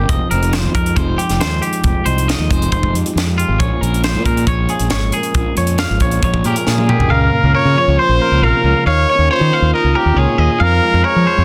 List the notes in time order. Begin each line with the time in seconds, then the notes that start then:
Already playing: F3 G#3
0.09 F2 D#5, kick, closed hi-hat
0.31 F1 C4 A#4, closed hi-hat
0.42 D#4, closed hi-hat
0.53 F3 C5, snare, closed hi-hat
0.64 F2
0.74 F2 G#3 A#4, kick, closed hi-hat
0.86 closed hi-hat
0.96 F1 D#4 C5, kick, closed hi-hat
1.18 F4 G4, closed hi-hat
1.29 F1 G4, snare, closed hi-hat
1.40 D#2 G#3 C5, snare, closed hi-hat
1.62 G4, closed hi-hat
1.73 closed hi-hat
1.83 F1 F2, kick, closed hi-hat
2.06 C2 D#4 C5, closed hi-hat
2.18 closed hi-hat
2.28 F3 D#5, snare, closed hi-hat
2.39 D#2
2.50 F1 G#3 C5, kick, closed hi-hat
2.62 closed hi-hat
2.72 F1 D#4 C5, kick, closed hi-hat
2.83 kick
2.93 F2 G4, closed hi-hat
3.06 closed hi-hat
3.15 F2 G#3, snare, closed hi-hat
3.38 F4 G4, closed hi-hat
3.49 G#1
3.59 A#1 A#2 F3 G#3 C#4 G#4 C#5, kick, closed hi-hat
3.81 A#1 C#4 A#4, closed hi-hat
3.94 closed hi-hat
4.04 F3 C5, snare, closed hi-hat
4.14 A#2
4.25 A#2 G#3 A#4, kick, closed hi-hat
4.37 closed hi-hat
4.47 A#1 C#4 C#5, kick, closed hi-hat
4.69 F4 G#4, closed hi-hat
4.79 A#1 G#4, closed hi-hat
4.90 G#1 G#3 C#5, snare, closed hi-hat
5.12 G#4 A#4, closed hi-hat
5.23 closed hi-hat
5.34 A#1 A#2, kick, closed hi-hat
5.57 F2 C#4 C#5, closed hi-hat
5.67 closed hi-hat
5.78 F3 F5, snare, closed hi-hat
5.90 G#1
6.00 A#1 G#3 C#5, kick, closed hi-hat
6.11 closed hi-hat
6.22 A#1 C#4 C#5, kick, closed hi-hat
6.34 kick
6.44 A#2 G4 G#4 A#4, closed hi-hat
6.56 closed hi-hat
6.66 A#2 G#3 G#4, snare
6.78 high tom
6.89 G4 A#4, mid tom
6.99 C2, floor tom
7.10 C#2 C#3 A#4 F5
7.32 A#3
7.43 C#2
7.54 F4 A#4 C#5
7.65 C#3
7.75 F3 C#4 C#5
7.88 C#2
7.97 F4 C5
8.09 A#1
8.20 A#3 A#4
8.31 C#2
8.41 A#1 C3 A#4 F5
8.64 C#2 C#3
8.86 D#2 D#3 C#5 F5
9.10 C#4 C#5
9.18 D#2
9.31 F4 C5 C#5
9.41 D#3
9.53 A#3 F4 F5
9.62 D#2
9.73 F4 A#4 D#5
9.84 C#2
9.95 C#4 G4 A#4
10.06 D#2
10.16 C#2 A#2 F4 G#4 C#5
10.38 D#2 C#4 D#5
10.60 F2 A#4 F5
10.84 G#3
10.94 F2
11.04 G#4 A#4 C#5
11.16 F3
11.27 F3 C4 C5
11.38 F2 D#4